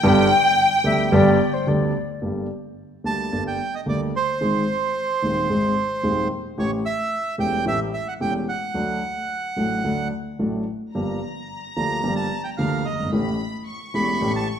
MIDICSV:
0, 0, Header, 1, 5, 480
1, 0, Start_track
1, 0, Tempo, 544959
1, 37, Time_signature, 4, 2, 24, 8
1, 12854, End_track
2, 0, Start_track
2, 0, Title_t, "Violin section"
2, 0, Program_c, 0, 48
2, 0, Note_on_c, 0, 79, 122
2, 1472, Note_off_c, 0, 79, 0
2, 9633, Note_on_c, 0, 82, 64
2, 11524, Note_off_c, 0, 82, 0
2, 11553, Note_on_c, 0, 83, 63
2, 12002, Note_off_c, 0, 83, 0
2, 12033, Note_on_c, 0, 85, 68
2, 12854, Note_off_c, 0, 85, 0
2, 12854, End_track
3, 0, Start_track
3, 0, Title_t, "Bandoneon"
3, 0, Program_c, 1, 23
3, 2695, Note_on_c, 1, 81, 63
3, 3027, Note_off_c, 1, 81, 0
3, 3061, Note_on_c, 1, 79, 56
3, 3302, Note_off_c, 1, 79, 0
3, 3303, Note_on_c, 1, 75, 47
3, 3354, Note_off_c, 1, 75, 0
3, 3424, Note_on_c, 1, 74, 49
3, 3529, Note_off_c, 1, 74, 0
3, 3664, Note_on_c, 1, 72, 52
3, 5531, Note_off_c, 1, 72, 0
3, 5805, Note_on_c, 1, 73, 63
3, 5911, Note_off_c, 1, 73, 0
3, 6038, Note_on_c, 1, 76, 69
3, 6480, Note_off_c, 1, 76, 0
3, 6519, Note_on_c, 1, 79, 66
3, 6737, Note_off_c, 1, 79, 0
3, 6763, Note_on_c, 1, 76, 80
3, 6868, Note_off_c, 1, 76, 0
3, 6992, Note_on_c, 1, 76, 61
3, 7113, Note_off_c, 1, 76, 0
3, 7116, Note_on_c, 1, 78, 51
3, 7168, Note_off_c, 1, 78, 0
3, 7236, Note_on_c, 1, 79, 67
3, 7342, Note_off_c, 1, 79, 0
3, 7476, Note_on_c, 1, 78, 61
3, 8880, Note_off_c, 1, 78, 0
3, 10364, Note_on_c, 1, 82, 70
3, 10697, Note_off_c, 1, 82, 0
3, 10713, Note_on_c, 1, 81, 59
3, 10940, Note_off_c, 1, 81, 0
3, 10956, Note_on_c, 1, 79, 45
3, 11011, Note_off_c, 1, 79, 0
3, 11076, Note_on_c, 1, 77, 59
3, 11319, Note_on_c, 1, 75, 49
3, 11327, Note_off_c, 1, 77, 0
3, 11544, Note_off_c, 1, 75, 0
3, 12285, Note_on_c, 1, 83, 75
3, 12615, Note_off_c, 1, 83, 0
3, 12649, Note_on_c, 1, 81, 63
3, 12753, Note_off_c, 1, 81, 0
3, 12854, End_track
4, 0, Start_track
4, 0, Title_t, "Flute"
4, 0, Program_c, 2, 73
4, 277, Note_on_c, 2, 79, 127
4, 718, Note_off_c, 2, 79, 0
4, 753, Note_on_c, 2, 76, 106
4, 975, Note_off_c, 2, 76, 0
4, 993, Note_on_c, 2, 74, 108
4, 1353, Note_on_c, 2, 72, 86
4, 1366, Note_off_c, 2, 74, 0
4, 1483, Note_on_c, 2, 74, 85
4, 1496, Note_off_c, 2, 72, 0
4, 1964, Note_off_c, 2, 74, 0
4, 12854, End_track
5, 0, Start_track
5, 0, Title_t, "Grand piano"
5, 0, Program_c, 3, 0
5, 28, Note_on_c, 3, 50, 78
5, 29, Note_on_c, 3, 55, 78
5, 30, Note_on_c, 3, 43, 107
5, 31, Note_on_c, 3, 67, 95
5, 32, Note_on_c, 3, 59, 84
5, 33, Note_on_c, 3, 31, 102
5, 232, Note_off_c, 3, 50, 0
5, 232, Note_off_c, 3, 55, 0
5, 233, Note_off_c, 3, 43, 0
5, 233, Note_off_c, 3, 59, 0
5, 233, Note_off_c, 3, 67, 0
5, 234, Note_off_c, 3, 31, 0
5, 739, Note_on_c, 3, 50, 63
5, 740, Note_on_c, 3, 55, 50
5, 741, Note_on_c, 3, 38, 62
5, 741, Note_on_c, 3, 59, 47
5, 743, Note_on_c, 3, 67, 63
5, 946, Note_off_c, 3, 50, 0
5, 946, Note_off_c, 3, 55, 0
5, 947, Note_off_c, 3, 38, 0
5, 947, Note_off_c, 3, 59, 0
5, 948, Note_off_c, 3, 67, 0
5, 986, Note_on_c, 3, 43, 99
5, 986, Note_on_c, 3, 50, 86
5, 988, Note_on_c, 3, 55, 78
5, 989, Note_on_c, 3, 59, 74
5, 990, Note_on_c, 3, 67, 97
5, 991, Note_on_c, 3, 31, 95
5, 1191, Note_off_c, 3, 43, 0
5, 1191, Note_off_c, 3, 50, 0
5, 1192, Note_off_c, 3, 55, 0
5, 1192, Note_off_c, 3, 59, 0
5, 1193, Note_off_c, 3, 31, 0
5, 1193, Note_off_c, 3, 67, 0
5, 1471, Note_on_c, 3, 50, 69
5, 1473, Note_on_c, 3, 38, 63
5, 1474, Note_on_c, 3, 55, 47
5, 1475, Note_on_c, 3, 67, 62
5, 1477, Note_on_c, 3, 59, 48
5, 1678, Note_off_c, 3, 38, 0
5, 1678, Note_off_c, 3, 50, 0
5, 1678, Note_off_c, 3, 55, 0
5, 1679, Note_off_c, 3, 67, 0
5, 1680, Note_off_c, 3, 59, 0
5, 1952, Note_on_c, 3, 50, 45
5, 1953, Note_on_c, 3, 43, 51
5, 1955, Note_on_c, 3, 55, 40
5, 1956, Note_on_c, 3, 31, 54
5, 1956, Note_on_c, 3, 58, 41
5, 1958, Note_on_c, 3, 67, 45
5, 2160, Note_off_c, 3, 43, 0
5, 2160, Note_off_c, 3, 50, 0
5, 2161, Note_off_c, 3, 31, 0
5, 2161, Note_off_c, 3, 55, 0
5, 2162, Note_off_c, 3, 58, 0
5, 2162, Note_off_c, 3, 67, 0
5, 2679, Note_on_c, 3, 38, 50
5, 2679, Note_on_c, 3, 50, 52
5, 2679, Note_on_c, 3, 55, 43
5, 2680, Note_on_c, 3, 58, 40
5, 2685, Note_on_c, 3, 67, 49
5, 2886, Note_off_c, 3, 38, 0
5, 2886, Note_off_c, 3, 50, 0
5, 2886, Note_off_c, 3, 55, 0
5, 2886, Note_off_c, 3, 58, 0
5, 2888, Note_off_c, 3, 67, 0
5, 2925, Note_on_c, 3, 43, 57
5, 2925, Note_on_c, 3, 50, 49
5, 2926, Note_on_c, 3, 55, 43
5, 2926, Note_on_c, 3, 58, 42
5, 2928, Note_on_c, 3, 31, 58
5, 2931, Note_on_c, 3, 67, 54
5, 3129, Note_off_c, 3, 43, 0
5, 3129, Note_off_c, 3, 50, 0
5, 3129, Note_off_c, 3, 55, 0
5, 3130, Note_off_c, 3, 31, 0
5, 3130, Note_off_c, 3, 58, 0
5, 3132, Note_off_c, 3, 67, 0
5, 3399, Note_on_c, 3, 50, 51
5, 3401, Note_on_c, 3, 55, 41
5, 3402, Note_on_c, 3, 58, 46
5, 3403, Note_on_c, 3, 38, 60
5, 3405, Note_on_c, 3, 67, 52
5, 3606, Note_off_c, 3, 50, 0
5, 3607, Note_off_c, 3, 55, 0
5, 3607, Note_off_c, 3, 58, 0
5, 3608, Note_off_c, 3, 38, 0
5, 3608, Note_off_c, 3, 67, 0
5, 3883, Note_on_c, 3, 51, 48
5, 3883, Note_on_c, 3, 56, 44
5, 3884, Note_on_c, 3, 32, 51
5, 3884, Note_on_c, 3, 44, 54
5, 3887, Note_on_c, 3, 60, 44
5, 3887, Note_on_c, 3, 68, 56
5, 4088, Note_off_c, 3, 32, 0
5, 4088, Note_off_c, 3, 44, 0
5, 4088, Note_off_c, 3, 51, 0
5, 4088, Note_off_c, 3, 56, 0
5, 4090, Note_off_c, 3, 60, 0
5, 4090, Note_off_c, 3, 68, 0
5, 4601, Note_on_c, 3, 51, 45
5, 4605, Note_on_c, 3, 56, 43
5, 4606, Note_on_c, 3, 27, 58
5, 4606, Note_on_c, 3, 60, 37
5, 4607, Note_on_c, 3, 39, 49
5, 4608, Note_on_c, 3, 68, 51
5, 4804, Note_off_c, 3, 51, 0
5, 4806, Note_off_c, 3, 56, 0
5, 4807, Note_off_c, 3, 27, 0
5, 4807, Note_off_c, 3, 39, 0
5, 4807, Note_off_c, 3, 60, 0
5, 4807, Note_off_c, 3, 68, 0
5, 4843, Note_on_c, 3, 44, 54
5, 4843, Note_on_c, 3, 51, 51
5, 4845, Note_on_c, 3, 56, 46
5, 4846, Note_on_c, 3, 68, 55
5, 4847, Note_on_c, 3, 60, 49
5, 4848, Note_on_c, 3, 32, 59
5, 5045, Note_off_c, 3, 44, 0
5, 5045, Note_off_c, 3, 51, 0
5, 5045, Note_off_c, 3, 56, 0
5, 5046, Note_off_c, 3, 60, 0
5, 5046, Note_off_c, 3, 68, 0
5, 5047, Note_off_c, 3, 32, 0
5, 5314, Note_on_c, 3, 51, 52
5, 5317, Note_on_c, 3, 27, 59
5, 5317, Note_on_c, 3, 56, 46
5, 5319, Note_on_c, 3, 60, 46
5, 5319, Note_on_c, 3, 68, 54
5, 5320, Note_on_c, 3, 39, 62
5, 5517, Note_off_c, 3, 51, 0
5, 5518, Note_off_c, 3, 27, 0
5, 5519, Note_off_c, 3, 56, 0
5, 5520, Note_off_c, 3, 39, 0
5, 5520, Note_off_c, 3, 60, 0
5, 5520, Note_off_c, 3, 68, 0
5, 5792, Note_on_c, 3, 57, 46
5, 5792, Note_on_c, 3, 61, 48
5, 5793, Note_on_c, 3, 52, 48
5, 5794, Note_on_c, 3, 45, 59
5, 5795, Note_on_c, 3, 33, 63
5, 5796, Note_on_c, 3, 67, 58
5, 5995, Note_off_c, 3, 52, 0
5, 5995, Note_off_c, 3, 57, 0
5, 5995, Note_off_c, 3, 61, 0
5, 5996, Note_off_c, 3, 33, 0
5, 5996, Note_off_c, 3, 45, 0
5, 5997, Note_off_c, 3, 67, 0
5, 6500, Note_on_c, 3, 52, 47
5, 6503, Note_on_c, 3, 57, 48
5, 6503, Note_on_c, 3, 61, 45
5, 6504, Note_on_c, 3, 40, 59
5, 6504, Note_on_c, 3, 67, 57
5, 6506, Note_on_c, 3, 28, 56
5, 6706, Note_off_c, 3, 52, 0
5, 6707, Note_off_c, 3, 57, 0
5, 6707, Note_off_c, 3, 61, 0
5, 6708, Note_off_c, 3, 40, 0
5, 6708, Note_off_c, 3, 67, 0
5, 6709, Note_off_c, 3, 28, 0
5, 6740, Note_on_c, 3, 52, 49
5, 6744, Note_on_c, 3, 45, 64
5, 6746, Note_on_c, 3, 33, 64
5, 6746, Note_on_c, 3, 57, 50
5, 6746, Note_on_c, 3, 61, 50
5, 6749, Note_on_c, 3, 67, 62
5, 6945, Note_off_c, 3, 52, 0
5, 6947, Note_off_c, 3, 45, 0
5, 6948, Note_off_c, 3, 33, 0
5, 6948, Note_off_c, 3, 57, 0
5, 6948, Note_off_c, 3, 61, 0
5, 6950, Note_off_c, 3, 67, 0
5, 7224, Note_on_c, 3, 52, 52
5, 7226, Note_on_c, 3, 61, 49
5, 7227, Note_on_c, 3, 28, 64
5, 7228, Note_on_c, 3, 57, 46
5, 7229, Note_on_c, 3, 40, 59
5, 7229, Note_on_c, 3, 67, 56
5, 7427, Note_off_c, 3, 52, 0
5, 7428, Note_off_c, 3, 28, 0
5, 7428, Note_off_c, 3, 61, 0
5, 7429, Note_off_c, 3, 40, 0
5, 7429, Note_off_c, 3, 57, 0
5, 7429, Note_off_c, 3, 67, 0
5, 7700, Note_on_c, 3, 54, 53
5, 7702, Note_on_c, 3, 57, 49
5, 7703, Note_on_c, 3, 38, 60
5, 7704, Note_on_c, 3, 50, 58
5, 7706, Note_on_c, 3, 62, 46
5, 7707, Note_on_c, 3, 69, 53
5, 7904, Note_off_c, 3, 54, 0
5, 7906, Note_off_c, 3, 38, 0
5, 7906, Note_off_c, 3, 50, 0
5, 7906, Note_off_c, 3, 57, 0
5, 7908, Note_off_c, 3, 62, 0
5, 7908, Note_off_c, 3, 69, 0
5, 8424, Note_on_c, 3, 54, 46
5, 8427, Note_on_c, 3, 57, 41
5, 8429, Note_on_c, 3, 33, 50
5, 8429, Note_on_c, 3, 45, 54
5, 8429, Note_on_c, 3, 69, 54
5, 8432, Note_on_c, 3, 62, 39
5, 8628, Note_off_c, 3, 54, 0
5, 8630, Note_off_c, 3, 57, 0
5, 8631, Note_off_c, 3, 33, 0
5, 8631, Note_off_c, 3, 45, 0
5, 8631, Note_off_c, 3, 69, 0
5, 8632, Note_off_c, 3, 62, 0
5, 8669, Note_on_c, 3, 54, 46
5, 8669, Note_on_c, 3, 62, 44
5, 8671, Note_on_c, 3, 38, 61
5, 8671, Note_on_c, 3, 57, 46
5, 8672, Note_on_c, 3, 50, 59
5, 8675, Note_on_c, 3, 69, 56
5, 8872, Note_off_c, 3, 54, 0
5, 8872, Note_off_c, 3, 62, 0
5, 8873, Note_off_c, 3, 38, 0
5, 8873, Note_off_c, 3, 57, 0
5, 8874, Note_off_c, 3, 50, 0
5, 8875, Note_off_c, 3, 69, 0
5, 9153, Note_on_c, 3, 54, 48
5, 9154, Note_on_c, 3, 57, 48
5, 9155, Note_on_c, 3, 62, 43
5, 9156, Note_on_c, 3, 45, 53
5, 9156, Note_on_c, 3, 69, 49
5, 9157, Note_on_c, 3, 33, 53
5, 9357, Note_off_c, 3, 54, 0
5, 9358, Note_off_c, 3, 57, 0
5, 9358, Note_off_c, 3, 62, 0
5, 9359, Note_off_c, 3, 33, 0
5, 9359, Note_off_c, 3, 45, 0
5, 9359, Note_off_c, 3, 69, 0
5, 9642, Note_on_c, 3, 43, 55
5, 9643, Note_on_c, 3, 53, 46
5, 9643, Note_on_c, 3, 58, 46
5, 9643, Note_on_c, 3, 62, 43
5, 9645, Note_on_c, 3, 31, 56
5, 9645, Note_on_c, 3, 67, 55
5, 9844, Note_off_c, 3, 43, 0
5, 9844, Note_off_c, 3, 53, 0
5, 9844, Note_off_c, 3, 58, 0
5, 9844, Note_off_c, 3, 62, 0
5, 9845, Note_off_c, 3, 31, 0
5, 9845, Note_off_c, 3, 67, 0
5, 10361, Note_on_c, 3, 58, 41
5, 10362, Note_on_c, 3, 53, 51
5, 10363, Note_on_c, 3, 38, 51
5, 10363, Note_on_c, 3, 50, 56
5, 10363, Note_on_c, 3, 62, 48
5, 10367, Note_on_c, 3, 67, 51
5, 10562, Note_off_c, 3, 58, 0
5, 10563, Note_off_c, 3, 38, 0
5, 10563, Note_off_c, 3, 53, 0
5, 10563, Note_off_c, 3, 62, 0
5, 10564, Note_off_c, 3, 50, 0
5, 10565, Note_off_c, 3, 67, 0
5, 10600, Note_on_c, 3, 53, 53
5, 10600, Note_on_c, 3, 58, 48
5, 10602, Note_on_c, 3, 31, 60
5, 10602, Note_on_c, 3, 43, 65
5, 10602, Note_on_c, 3, 62, 46
5, 10603, Note_on_c, 3, 67, 58
5, 10802, Note_off_c, 3, 53, 0
5, 10802, Note_off_c, 3, 58, 0
5, 10803, Note_off_c, 3, 31, 0
5, 10803, Note_off_c, 3, 43, 0
5, 10803, Note_off_c, 3, 62, 0
5, 10804, Note_off_c, 3, 67, 0
5, 11082, Note_on_c, 3, 53, 52
5, 11083, Note_on_c, 3, 58, 47
5, 11085, Note_on_c, 3, 50, 67
5, 11085, Note_on_c, 3, 62, 48
5, 11086, Note_on_c, 3, 67, 54
5, 11087, Note_on_c, 3, 38, 59
5, 11284, Note_off_c, 3, 53, 0
5, 11284, Note_off_c, 3, 58, 0
5, 11285, Note_off_c, 3, 50, 0
5, 11285, Note_off_c, 3, 62, 0
5, 11286, Note_off_c, 3, 38, 0
5, 11286, Note_off_c, 3, 67, 0
5, 11386, Note_on_c, 3, 30, 35
5, 11444, Note_off_c, 3, 30, 0
5, 11448, Note_on_c, 3, 31, 45
5, 11496, Note_on_c, 3, 32, 48
5, 11505, Note_off_c, 3, 31, 0
5, 11558, Note_on_c, 3, 57, 49
5, 11559, Note_off_c, 3, 32, 0
5, 11559, Note_on_c, 3, 52, 50
5, 11560, Note_on_c, 3, 33, 67
5, 11560, Note_on_c, 3, 45, 58
5, 11562, Note_on_c, 3, 61, 46
5, 11564, Note_on_c, 3, 67, 57
5, 11761, Note_off_c, 3, 57, 0
5, 11762, Note_off_c, 3, 33, 0
5, 11762, Note_off_c, 3, 45, 0
5, 11762, Note_off_c, 3, 52, 0
5, 11763, Note_off_c, 3, 61, 0
5, 11764, Note_off_c, 3, 67, 0
5, 12277, Note_on_c, 3, 52, 53
5, 12280, Note_on_c, 3, 57, 48
5, 12283, Note_on_c, 3, 28, 52
5, 12283, Note_on_c, 3, 40, 60
5, 12283, Note_on_c, 3, 61, 42
5, 12284, Note_on_c, 3, 67, 58
5, 12479, Note_off_c, 3, 52, 0
5, 12480, Note_off_c, 3, 57, 0
5, 12481, Note_off_c, 3, 28, 0
5, 12482, Note_off_c, 3, 40, 0
5, 12482, Note_off_c, 3, 61, 0
5, 12482, Note_off_c, 3, 67, 0
5, 12516, Note_on_c, 3, 52, 57
5, 12519, Note_on_c, 3, 45, 69
5, 12519, Note_on_c, 3, 57, 51
5, 12522, Note_on_c, 3, 33, 69
5, 12522, Note_on_c, 3, 61, 52
5, 12522, Note_on_c, 3, 67, 61
5, 12717, Note_off_c, 3, 52, 0
5, 12719, Note_off_c, 3, 45, 0
5, 12719, Note_off_c, 3, 57, 0
5, 12720, Note_off_c, 3, 33, 0
5, 12720, Note_off_c, 3, 61, 0
5, 12720, Note_off_c, 3, 67, 0
5, 12854, End_track
0, 0, End_of_file